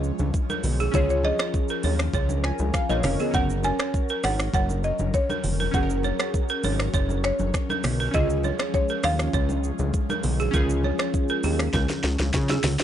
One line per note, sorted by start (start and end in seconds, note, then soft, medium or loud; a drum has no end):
0.00 0.12 C#2 loud
0.00 3.30 F3 medium
0.00 0.91 G#3 medium
0.00 0.89 C#4 medium
0.00 3.30 C#4 medium
0.00 0.90 F4 medium
0.00 0.91 G#4 medium
0.00 0.60 D#5 loud
0.00 shaker soft
0.19 0.32 C#2 medium
0.19 high conga medium
0.19 shaker medium
0.34 kick loud
0.34 shaker medium
0.50 0.59 A#4 medium
0.50 high conga medium
0.50 shaker medium
0.64 0.89 B1 medium
0.64 open hi-hat medium
0.64 low conga medium
0.64 shaker medium
0.80 0.89 G#4 medium
0.80 high conga medium
0.80 shaker medium
0.91 1.32 C#2 loud
0.91 2.40 C#4 medium
0.91 2.41 F4 medium
0.91 1.04 G#4 medium
0.91 8.10 A#4 medium
0.91 1.09 C#5 loud
0.91 kick loud
0.91 low conga medium
0.91 shaker medium
0.96 2.42 G#4 medium
1.10 1.25 C#5 medium
1.10 shaker medium
1.24 1.34 C#5 medium
1.24 2.10 D#5 loud
1.24 high conga medium
1.39 1.49 C#5 medium
1.39 finger snap medium
1.39 cross-stick loud
1.39 shaker soft
1.54 kick loud
1.54 shaker medium
1.69 1.79 A#4 medium
1.69 shaker medium
1.83 2.09 D#2 medium
1.83 1.94 C#5 medium
1.83 open hi-hat medium
1.83 high conga medium
1.83 shaker medium
1.99 finger snap medium
1.99 cross-stick medium
1.99 shaker medium
2.14 2.52 C#2 loud
2.14 2.34 C#5 medium
2.14 kick loud
2.14 shaker medium
2.29 high conga medium
2.29 shaker medium
2.44 2.72 G#5 medium
2.44 finger snap medium
2.44 cross-stick medium
2.58 2.72 C#2 medium
2.58 high conga medium
2.58 shaker medium
2.74 2.88 F5 medium
2.74 finger snap medium
2.74 kick loud
2.74 cross-stick loud
2.74 shaker medium
2.89 3.02 A#1 loud
2.89 3.03 F4 medium
2.89 2.99 A#4 medium
2.89 3.03 C#5 medium
2.89 3.03 D#5 medium
2.89 high conga medium
2.89 shaker medium
3.03 3.17 F1 medium
3.03 3.19 C#4 medium
3.03 3.19 A#4 medium
3.03 3.32 C#5 medium
3.03 finger snap medium
3.03 cross-stick medium
3.03 open hi-hat medium
3.03 low conga medium
3.03 shaker medium
3.19 3.48 B3 medium
3.19 3.48 G#4 medium
3.19 3.29 G#4 medium
3.19 high conga medium
3.19 shaker medium
3.31 3.72 F#1 loud
3.31 8.10 F#3 medium
3.31 5.68 C#4 medium
3.31 12.84 C#4 medium
3.31 5.70 F#4 medium
3.31 3.44 A#4 medium
3.31 3.65 F#5 loud
3.31 kick loud
3.31 low conga medium
3.31 shaker medium
3.36 5.71 A#4 medium
3.50 shaker medium
3.63 3.74 C#5 medium
3.63 4.26 G#5 loud
3.63 high conga medium
3.63 shaker medium
3.79 3.89 C#5 medium
3.79 finger snap medium
3.79 cross-stick loud
3.79 shaker soft
3.94 kick loud
3.94 shaker medium
4.09 4.19 A#4 medium
4.09 shaker medium
4.24 4.49 G#1 medium
4.24 4.34 C#5 medium
4.24 4.53 F#5 loud
4.24 finger snap medium
4.24 cross-stick medium
4.24 open hi-hat medium
4.24 high conga medium
4.24 shaker medium
4.39 finger snap medium
4.39 cross-stick loud
4.39 shaker medium
4.54 4.92 F#1 loud
4.54 4.74 C#5 medium
4.54 4.85 F#5 loud
4.54 kick loud
4.54 shaker medium
4.69 high conga medium
4.69 shaker medium
4.84 5.12 D#5 medium
4.84 shaker soft
4.99 5.12 F#1 loud
4.99 high conga medium
4.99 shaker medium
5.14 5.76 C#5 medium
5.14 kick loud
5.14 shaker medium
5.30 5.39 A#4 medium
5.30 high conga medium
5.30 shaker medium
5.44 5.69 F1 medium
5.44 open hi-hat medium
5.44 low conga medium
5.44 shaker medium
5.60 5.69 A#4 medium
5.60 high conga medium
5.60 shaker medium
5.71 6.12 F#1 loud
5.71 8.09 C#4 medium
5.71 8.10 F#4 medium
5.71 5.84 A#4 medium
5.71 6.30 F#5 medium
5.71 kick loud
5.71 low conga medium
5.71 shaker medium
5.76 5.82 G#4 medium
5.83 8.14 A#4 medium
5.90 shaker medium
6.03 6.14 C#5 medium
6.03 high conga medium
6.03 shaker medium
6.19 6.29 C#5 medium
6.19 finger snap medium
6.19 cross-stick loud
6.19 shaker soft
6.34 kick loud
6.34 shaker medium
6.49 6.59 A#4 medium
6.49 shaker medium
6.64 6.89 G#1 loud
6.64 6.74 C#5 medium
6.64 open hi-hat medium
6.64 high conga medium
6.64 shaker medium
6.79 finger snap medium
6.79 cross-stick loud
6.79 shaker medium
6.94 7.32 F#1 loud
6.94 7.13 C#5 medium
6.94 kick loud
6.94 shaker medium
7.09 high conga medium
7.09 shaker medium
7.24 8.17 C#5 loud
7.24 finger snap medium
7.24 cross-stick medium
7.24 shaker soft
7.39 7.52 F#1 medium
7.39 high conga medium
7.39 shaker medium
7.54 finger snap medium
7.54 kick loud
7.54 cross-stick loud
7.54 shaker medium
7.69 7.79 A#4 medium
7.69 high conga medium
7.69 shaker medium
7.84 8.09 B1 medium
7.84 finger snap medium
7.84 cross-stick medium
7.84 open hi-hat medium
7.84 low conga medium
7.84 shaker medium
8.00 8.09 A#4 medium
8.00 high conga medium
8.00 shaker medium
8.11 8.52 C#2 loud
8.11 12.84 F3 medium
8.11 12.84 G#3 medium
8.11 10.49 C#4 medium
8.11 10.50 F4 medium
8.11 8.24 G#4 medium
8.11 8.70 D#5 loud
8.11 kick loud
8.11 low conga medium
8.11 shaker medium
8.16 10.51 G#4 medium
8.30 shaker medium
8.43 8.54 C#5 medium
8.43 high conga medium
8.43 shaker medium
8.59 8.69 C#5 medium
8.59 finger snap medium
8.59 cross-stick loud
8.59 shaker soft
8.74 9.05 C#5 loud
8.74 kick loud
8.74 shaker medium
8.89 8.99 A#4 medium
8.89 shaker medium
9.03 9.29 D#2 medium
9.03 9.14 C#5 medium
9.03 12.30 F5 loud
9.03 finger snap medium
9.03 cross-stick loud
9.03 open hi-hat medium
9.03 high conga medium
9.03 shaker medium
9.19 finger snap medium
9.19 cross-stick loud
9.19 shaker medium
9.34 9.72 C#2 loud
9.34 9.53 C#5 medium
9.34 kick loud
9.34 shaker medium
9.49 high conga medium
9.49 shaker medium
9.64 shaker medium
9.79 9.91 C#2 loud
9.79 high conga medium
9.79 shaker medium
9.94 kick loud
9.94 shaker medium
10.10 10.19 A#4 medium
10.10 high conga medium
10.10 shaker medium
10.23 10.49 B1 loud
10.23 open hi-hat medium
10.23 low conga medium
10.23 shaker medium
10.40 10.49 G#4 medium
10.40 high conga medium
10.40 shaker medium
10.51 10.92 C#2 loud
10.51 12.84 C#4 medium
10.51 12.84 F4 medium
10.51 10.64 A#4 medium
10.51 kick loud
10.51 low conga medium
10.51 shaker medium
10.56 12.84 G#4 medium
10.70 shaker medium
10.83 10.94 C#5 medium
10.83 high conga medium
10.99 11.09 C#5 medium
10.99 finger snap medium
10.99 cross-stick loud
10.99 shaker soft
11.14 kick loud
11.14 shaker medium
11.29 11.39 A#4 medium
11.29 shaker medium
11.43 11.69 D#2 medium
11.43 11.54 G#4 medium
11.43 open hi-hat medium
11.43 high conga medium
11.43 shaker medium
11.59 finger snap medium
11.59 cross-stick loud
11.59 shaker medium
11.74 11.87 C#2 loud
11.74 11.93 A#4 medium
11.74 kick loud
11.74 snare medium
11.74 low conga medium
11.74 shaker medium
11.89 snare medium
11.89 high conga medium
11.89 shaker medium
12.04 12.17 C#2 medium
12.04 snare medium
12.19 12.32 C#2 medium
12.19 snare medium
12.19 high conga medium
12.19 shaker medium
12.34 12.59 C#3 loud
12.34 kick loud
12.34 snare medium
12.34 shaker medium
12.50 12.59 G#4 medium
12.50 snare medium
12.50 high conga medium
12.50 shaker soft
12.64 12.77 C#2 medium
12.64 snare loud
12.64 open hi-hat medium
12.64 low conga medium
12.64 shaker medium
12.80 12.84 G#4 medium
12.80 snare loud
12.80 high conga medium
12.80 shaker medium